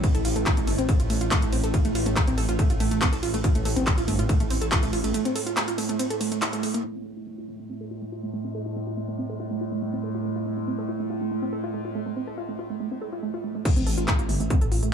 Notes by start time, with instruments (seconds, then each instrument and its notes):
Already playing: synth drone A2
0.04 synth arpeggio sound C4, kick, closed hi-hat, ride
0.15 detuned saw bass A1, synth arpeggio sound A4, closed hi-hat, ride
0.25 detuned saw bass A1, synth arpeggio sound F4, open hi-hat, ride
0.36 detuned saw bass A1, synth arpeggio sound A3, closed hi-hat, ride
0.46 synth arpeggio sound F4, kick, clap, closed hi-hat, ride
0.57 detuned saw bass A1, synth arpeggio sound A3, closed hi-hat, ride
0.67 detuned saw bass G1, synth arpeggio sound A3, open hi-hat, ride
0.78 detuned saw bass A1, synth arpeggio sound C4, closed hi-hat, ride
0.89 synth arpeggio sound A4, kick, closed hi-hat, ride
1.00 detuned saw bass A1, synth arpeggio sound F4, closed hi-hat, ride
1.10 detuned saw bass A1, synth arpeggio sound A3, open hi-hat, ride
1.21 detuned saw bass A1, synth arpeggio sound F4, closed hi-hat, ride
1.31 synth arpeggio sound A3, kick, clap, closed hi-hat, ride
1.42 detuned saw bass A1, synth arpeggio sound A3, closed hi-hat, ride
1.53 detuned saw bass A1, synth arpeggio sound C4, open hi-hat, ride
1.64 detuned saw bass A1, synth arpeggio sound A4, closed hi-hat, ride
1.74 synth arpeggio sound F4, kick, closed hi-hat, ride
1.85 detuned saw bass A1, synth arpeggio sound A3, closed hi-hat, ride
1.95 detuned saw bass A1, synth arpeggio sound F4, open hi-hat, ride
2.06 detuned saw bass A1, synth arpeggio sound A3, closed hi-hat, ride
2.16 synth arpeggio sound A3, kick, clap, closed hi-hat, ride
2.27 detuned saw bass A1, synth arpeggio sound C4, closed hi-hat, ride
2.38 detuned saw bass A1, synth arpeggio sound A4, open hi-hat, ride
2.49 detuned saw bass A1, synth arpeggio sound F4, closed hi-hat, ride
2.59 synth arpeggio sound A3, kick, closed hi-hat, ride
2.70 detuned saw bass A1, synth arpeggio sound F4, closed hi-hat, ride
2.80 detuned saw bass A1, synth arpeggio sound A3, open hi-hat, ride
2.91 detuned saw bass A1, synth arpeggio sound A3, closed hi-hat, ride
3.02 synth arpeggio sound C4, kick, clap, closed hi-hat, ride
3.13 detuned saw bass A1, synth arpeggio sound A4, closed hi-hat, ride
3.23 detuned saw bass A1, synth arpeggio sound F4, open hi-hat, ride
3.34 detuned saw bass A1, synth arpeggio sound A3, closed hi-hat, ride
3.44 synth arpeggio sound F4, kick, closed hi-hat, ride
3.55 detuned saw bass A1, synth arpeggio sound A3, closed hi-hat, ride
3.65 detuned saw bass A1, synth arpeggio sound A3, open hi-hat, ride
3.76 detuned saw bass A1, synth arpeggio sound C4, closed hi-hat, ride
3.87 synth arpeggio sound A4, kick, clap, closed hi-hat, ride
3.98 detuned saw bass A1, synth arpeggio sound F4, closed hi-hat, ride
4.08 detuned saw bass G1, synth arpeggio sound A3, open hi-hat, ride
4.19 detuned saw bass A1, synth arpeggio sound F4, closed hi-hat, ride
4.29 synth arpeggio sound A3, kick, closed hi-hat, ride
4.40 detuned saw bass A1, synth arpeggio sound A3, closed hi-hat, ride
4.50 detuned saw bass A1, synth arpeggio sound C4, open hi-hat, ride
4.61 detuned saw bass A1, synth arpeggio sound A4, closed hi-hat, ride
4.72 synth arpeggio sound F4, kick, clap, closed hi-hat, ride
4.83 detuned saw bass A1, synth arpeggio sound A3, closed hi-hat, ride
4.93 detuned saw bass A1, synth arpeggio sound F4, open hi-hat, ride
5.04 detuned saw bass A1, synth arpeggio sound A3, closed hi-hat, ride
5.14 synth arpeggio sound A3, closed hi-hat, ride
5.25 synth arpeggio sound C4, closed hi-hat, ride
5.35 synth arpeggio sound A4, open hi-hat, ride
5.47 synth arpeggio sound F4, closed hi-hat, ride
5.57 synth arpeggio sound A3, clap, closed hi-hat, ride
5.68 synth arpeggio sound F4, closed hi-hat, ride
5.78 synth arpeggio sound A3, open hi-hat, ride
5.89 synth arpeggio sound A3, closed hi-hat, ride
5.99 synth arpeggio sound C4, closed hi-hat, ride
6.10 synth arpeggio sound A4, closed hi-hat, ride
6.21 synth arpeggio sound A3, open hi-hat, ride
6.32 synth arpeggio sound A3, closed hi-hat, ride
6.42 synth arpeggio sound E4, clap, closed hi-hat, ride
6.53 synth arpeggio sound A3, closed hi-hat, ride
6.63 synth arpeggio sound A3, open hi-hat, ride
6.74 synth arpeggio sound A#3, closed hi-hat, ride
6.84 synth drone A2
6.96 synth arpeggio sound C4
7.06 synth arpeggio sound A4
7.17 synth arpeggio sound F4
7.27 synth arpeggio sound A3
7.38 synth arpeggio sound F4
7.48 synth arpeggio sound A3
7.59 synth arpeggio sound A3
7.70 synth arpeggio sound C4
7.81 synth arpeggio sound A4
7.91 synth arpeggio sound F4
8.02 synth arpeggio sound A3
8.12 synth arpeggio sound F4
8.23 synth arpeggio sound A3
8.33 synth arpeggio sound A3
8.44 synth arpeggio sound C4
8.55 synth arpeggio sound A4
8.66 synth arpeggio sound F4
8.76 synth arpeggio sound A3
8.87 synth arpeggio sound F4
8.97 synth arpeggio sound A3
9.08 synth arpeggio sound A3
9.19 synth arpeggio sound C4
9.30 synth arpeggio sound A4
9.40 synth arpeggio sound F4
9.51 synth arpeggio sound A3
9.61 synth arpeggio sound F4
9.72 synth arpeggio sound A3
9.82 synth arpeggio sound A3
9.93 synth arpeggio sound C4
10.04 synth arpeggio sound A4
10.15 synth arpeggio sound F4
10.25 synth arpeggio sound A3
10.36 synth arpeggio sound F4
10.46 synth arpeggio sound A3
10.57 synth arpeggio sound A3
10.67 synth arpeggio sound C4
10.78 synth arpeggio sound A4
10.89 synth arpeggio sound F4
11.00 synth arpeggio sound A3
11.10 synth arpeggio sound F4
11.21 synth arpeggio sound A3
11.31 synth arpeggio sound A3
11.42 synth arpeggio sound C4
11.53 synth arpeggio sound A4
11.64 synth arpeggio sound F4
11.74 synth arpeggio sound A3
11.85 synth arpeggio sound F4
11.95 synth arpeggio sound A3
12.06 synth arpeggio sound A3
12.16 synth arpeggio sound C4
12.27 synth arpeggio sound A4
12.38 synth arpeggio sound F4
12.49 synth arpeggio sound A3
12.59 synth arpeggio sound F4
12.70 synth arpeggio sound A3
12.80 synth arpeggio sound A3
12.91 synth arpeggio sound C4
13.02 synth arpeggio sound A4
13.13 synth arpeggio sound F4
13.23 synth arpeggio sound A3
13.34 synth arpeggio sound F4
13.44 synth arpeggio sound A3
13.55 synth arpeggio sound A3
13.65 synth arpeggio sound A3, kick, closed hi-hat, crash
13.76 detuned saw bass A1, synth arpeggio sound C4, closed hi-hat
13.87 detuned saw bass A1, synth arpeggio sound A4, open hi-hat
13.98 detuned saw bass A1, synth arpeggio sound F4, closed hi-hat
14.08 synth arpeggio sound A3, kick, clap, closed hi-hat
14.19 detuned saw bass A1, synth arpeggio sound F4, closed hi-hat
14.29 detuned saw bass G1, synth arpeggio sound A3, open hi-hat
14.40 detuned saw bass A1, synth arpeggio sound A3, closed hi-hat
14.50 synth arpeggio sound C4, kick, closed hi-hat
14.61 detuned saw bass A1, synth arpeggio sound A4, closed hi-hat
14.72 detuned saw bass A1, synth arpeggio sound F4, open hi-hat
14.83 detuned saw bass A1, synth arpeggio sound A3, closed hi-hat